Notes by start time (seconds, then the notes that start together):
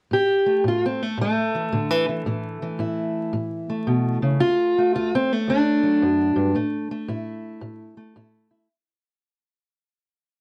0.11 A2 G4
0.46 A3
0.64 A2 F4
0.86 C4
1.02 A3
1.18 A2 A3
1.55 E3
1.72 A2 D3
1.90 E3
2.09 E3
2.26 A2 E3
2.62 E3
2.79 A2 E4
3.33 A2
3.70 A3
3.87 B2
4.22 C#3
4.40 D2 F4
4.78 A3
4.95 D2 F4
5.15 C4
5.32 A3
5.48 D2 D4
5.83 F#3
6.02 F#2
6.36 G2
6.55 A2 A3
6.91 A3
7.08 A2 E4
7.61 A2
7.97 A3
8.16 A2 E4
8.51 E4